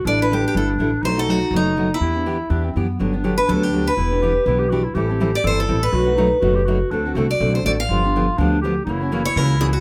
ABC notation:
X:1
M:4/4
L:1/8
Q:"Swing" 1/4=245
K:Em
V:1 name="Steel-string acoustic guitar"
d B G G A z3 | c A F2 ^D3 E- | E6 z2 | z3 B A G2 B- |
B4- B z3 | z3 d c A2 B- | B4- B z3 | z3 d2 c d =f- |
=f4- f z3 | z3 ^c ^A2 ^G F |]
V:2 name="Clarinet"
D8 | ^D8 | E4 D C B,2 | D8 |
E2 G2 E G F E | G4 A4 | F2 ^D2 F G F2 | D2 F4 z2 |
=F4 D2 G2 | E8 |]
V:3 name="Steel-string acoustic guitar"
[D,G,DEA] [DEA] [D,G,DEA] z [D,G,DEA] z [D,G,DEA] z | [B,,F,A,^DF] [A,DF] [B,,F,A,DF] z [B,,F,A,DF] z [B,,F,A,DF] z | [E,B,DG] [B,DG] [E,B,DG] z [E,B,DG] z [E,B,DG] z | [D,F,B,DG] [B,DG] [D,F,B,DG] z [D,F,B,DG] z [D,F,B,DG] z |
[E,B,DG] [B,DG] [E,B,DG] z [E,B,DG] z [E,B,DG] z | [E,G,CEA] [CEA] [E,G,CEA] z [E,G,CEA] z [E,G,CEA] z | [B,,F,A,^DF] [A,DF] [B,,F,A,DF] z [B,,F,A,DF] z [B,,F,A,DF] z | [D,A,CFA] [CFA] [D,A,CFA] z [D,A,CFA] z [D,A,CFA] z |
[D,=F,B,DG] [B,DG] [D,F,B,DG] z [D,F,B,DG] z [D,F,B,DG] z | [^C,E,^A,^CF] [A,CF] [C,E,A,CF] z [C,E,A,CF] z [C,E,A,CF] z |]
V:4 name="Upright bass" clef=bass
A,,,4 G,,,2 A,,,2 | B,,,4 F,,,4 | E,,4 E,,2 F,,2 | G,,,4 D,,4 |
E,,,4 B,,,4 | A,,,4 G,,,2 A,,,2 | B,,,4 F,,,4 | D,,2 C,,2 B,,,2 A,,,2 |
G,,,4 D,,4 | F,,,4 ^C,,4 |]